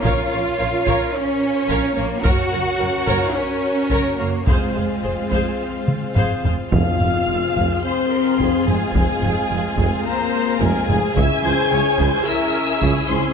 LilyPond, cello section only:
\new Staff \with { instrumentName = "Cello section" } { \clef bass \time 4/4 \key f \minor \tempo 4 = 108 f'2 des'4. bes8 | ges'2 des'4. bes8 | aes2. r4 | f,8 f,8 f,8 f,8 r4 f,8 f,8 |
f,8 f,8 f,8 f,8 r4 f,8 f,8 | des8 des8 des8 des8 r4 des8 des8 | }